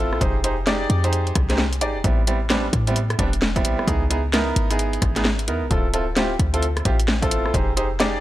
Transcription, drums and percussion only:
0.13 cross-stick
0.21 kick, closed hi-hat
0.44 closed hi-hat
0.67 snare, closed hi-hat
0.90 closed hi-hat
1.04 closed hi-hat
1.13 closed hi-hat
1.27 closed hi-hat
1.35 kick, cross-stick, closed hi-hat
1.50 snare, closed hi-hat
1.58 snare
1.73 closed hi-hat
1.81 closed hi-hat
2.04 kick, closed hi-hat
2.27 closed hi-hat
2.50 snare, closed hi-hat
2.73 kick, cross-stick, closed hi-hat
2.87 closed hi-hat
2.96 closed hi-hat
3.10 cross-stick, closed hi-hat
3.19 kick, closed hi-hat
3.33 closed hi-hat
3.42 snare
3.56 kick, closed hi-hat
3.65 closed hi-hat
3.79 cross-stick
3.88 kick, closed hi-hat
4.11 closed hi-hat
4.33 snare, closed hi-hat
4.56 closed hi-hat
4.71 closed hi-hat
4.79 closed hi-hat
4.93 closed hi-hat
5.02 kick, cross-stick, closed hi-hat
5.16 snare, closed hi-hat
5.25 snare
5.39 closed hi-hat
5.48 closed hi-hat
5.71 kick, closed hi-hat
5.94 closed hi-hat
6.17 snare, closed hi-hat
6.39 kick, cross-stick, closed hi-hat
6.54 closed hi-hat
6.62 closed hi-hat
6.77 cross-stick, closed hi-hat
6.85 kick, closed hi-hat
7.00 closed hi-hat
7.08 snare
7.22 kick, closed hi-hat
7.31 closed hi-hat
7.46 cross-stick
7.54 kick, closed hi-hat
7.77 closed hi-hat
8.00 snare, closed hi-hat

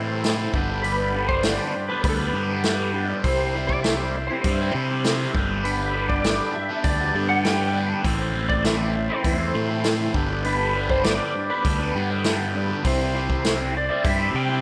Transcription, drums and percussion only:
0.24 snare, open hi-hat
0.54 kick
0.84 open hi-hat
1.29 kick
1.43 snare, open hi-hat
2.04 kick, open hi-hat
2.63 snare, open hi-hat
3.24 kick, open hi-hat
3.69 kick
3.84 snare, open hi-hat
4.44 kick, open hi-hat
5.04 snare, open hi-hat
5.35 kick
5.65 open hi-hat
6.09 kick
6.24 snare, open hi-hat
6.84 kick, open hi-hat
7.45 snare, open hi-hat
8.04 kick, open hi-hat
8.50 kick
8.65 snare, open hi-hat
9.24 kick, open hi-hat
9.84 snare, open hi-hat
10.14 kick
10.44 open hi-hat
10.89 kick
11.04 snare, open hi-hat
11.65 kick, open hi-hat
12.24 snare, open hi-hat
12.85 kick, open hi-hat
13.30 kick
13.45 snare, open hi-hat
14.05 kick, open hi-hat

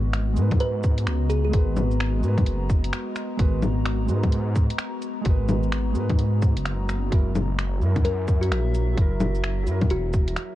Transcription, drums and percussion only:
0.13 finger snap, closed hi-hat
0.36 cabasa
0.51 kick, closed hi-hat, low bongo
0.60 closed hi-hat
0.83 kick, cabasa
0.98 closed hi-hat
1.07 finger snap, closed hi-hat
1.30 closed hi-hat, cabasa
1.53 kick, closed hi-hat
1.77 low bongo, cabasa
1.91 cabasa
2.00 finger snap, closed hi-hat
2.23 cabasa
2.38 kick, closed hi-hat, low bongo
2.46 closed hi-hat
2.70 kick, cabasa
2.84 closed hi-hat
2.93 finger snap, closed hi-hat
3.16 finger snap, closed hi-hat, cabasa
3.39 kick, closed hi-hat
3.63 low bongo, cabasa
3.86 finger snap, closed hi-hat
4.09 cabasa
4.23 kick, closed hi-hat, low bongo
4.32 closed hi-hat
4.56 kick, cabasa
4.70 closed hi-hat
4.79 finger snap, closed hi-hat
5.02 closed hi-hat, cabasa
5.25 kick, closed hi-hat
5.49 low bongo, cabasa
5.63 cabasa
5.72 finger snap, closed hi-hat
5.95 cabasa
6.10 kick, closed hi-hat, low bongo
6.19 closed hi-hat
6.42 kick, cabasa
6.57 closed hi-hat
6.65 finger snap, closed hi-hat
6.89 finger snap, closed hi-hat, cabasa
7.12 kick, closed hi-hat
7.35 low bongo, cabasa
7.59 finger snap, closed hi-hat
7.82 cabasa
7.96 kick, closed hi-hat, low bongo
8.05 closed hi-hat
8.28 kick, cabasa
8.43 closed hi-hat
8.52 finger snap, closed hi-hat
8.75 closed hi-hat, cabasa
8.98 kick, closed hi-hat
9.21 low bongo, cabasa
9.35 cabasa
9.44 finger snap, closed hi-hat
9.67 cabasa
9.82 kick, closed hi-hat, low bongo
9.90 closed hi-hat
10.13 kick, cabasa
10.28 closed hi-hat
10.37 finger snap, closed hi-hat

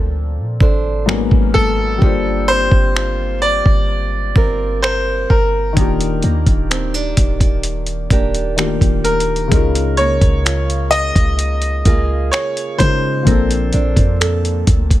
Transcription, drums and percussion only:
0.60 kick
1.09 finger snap
1.31 kick
1.55 kick
2.02 kick
2.71 kick
2.96 finger snap
3.66 kick
4.36 kick
4.84 finger snap
5.30 kick
5.77 kick, closed hi-hat
6.01 closed hi-hat
6.22 closed hi-hat
6.46 kick, closed hi-hat
6.71 finger snap, closed hi-hat
6.95 closed hi-hat
7.17 kick, closed hi-hat
7.40 kick, closed hi-hat
7.63 closed hi-hat
7.87 closed hi-hat
8.10 kick, closed hi-hat
8.35 closed hi-hat
8.58 finger snap, closed hi-hat
8.81 kick, closed hi-hat
9.05 closed hi-hat
9.20 closed hi-hat
9.36 closed hi-hat
9.52 kick, closed hi-hat
9.75 closed hi-hat
9.97 closed hi-hat
10.21 kick, closed hi-hat
10.46 finger snap, closed hi-hat
10.70 closed hi-hat
10.92 closed hi-hat
11.16 kick, closed hi-hat
11.39 closed hi-hat
11.62 closed hi-hat
11.85 kick, closed hi-hat
12.33 finger snap, closed hi-hat
12.57 closed hi-hat
12.80 kick, closed hi-hat
13.27 kick, closed hi-hat
13.51 closed hi-hat
13.73 closed hi-hat
13.96 kick, closed hi-hat
14.21 finger snap, closed hi-hat
14.45 closed hi-hat
14.67 kick, closed hi-hat
14.91 kick, closed hi-hat

